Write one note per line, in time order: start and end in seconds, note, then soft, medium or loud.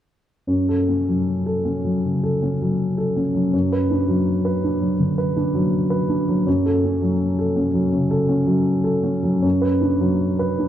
0.47 2.00 F#2 soft
0.69 1.00 A4 soft
0.89 1.20 C#4 soft
1.08 1.70 F#3 soft
1.46 1.77 A4 soft
1.65 1.96 C#4 soft
1.85 2.16 F#3 soft
2.05 2.35 C#3 soft
2.23 2.53 A4 soft
2.42 2.72 C#4 soft
2.62 3.20 F#3 soft
2.98 3.27 A4 soft
3.16 3.46 C#4 soft
3.35 3.53 F#3 soft
3.53 4.96 F#2 soft
3.72 4.02 B4 soft
3.90 4.20 D4 soft
4.08 4.67 F#3 soft
4.45 4.74 B4 soft
4.64 4.93 D4 soft
4.81 5.10 F#3 soft
5.00 5.29 D3 soft
5.18 5.47 B4 soft
5.36 5.65 D4 soft
5.55 6.12 F#3 soft
5.90 6.20 B4 soft
6.09 6.39 D4 soft
6.28 6.46 F#3 soft
6.46 7.89 F#2 soft
6.66 6.95 A4 soft
6.84 7.13 C#4 soft
7.02 7.60 F#3 soft
7.39 7.67 A4 soft
7.56 7.85 C#4 soft
7.74 8.03 F#3 soft
7.92 8.22 C#3 soft
8.11 8.40 A4 soft
8.29 8.59 C#4 soft
8.47 9.09 F#3 soft
8.84 9.16 A4 soft
9.04 9.36 C#4 soft
9.23 9.43 F#3 soft
9.42 10.68 F#2 soft
9.62 9.93 B4 soft
9.81 10.13 D4 soft
10.01 10.63 F#3 soft
10.39 10.68 B4 soft
10.59 10.68 D4 soft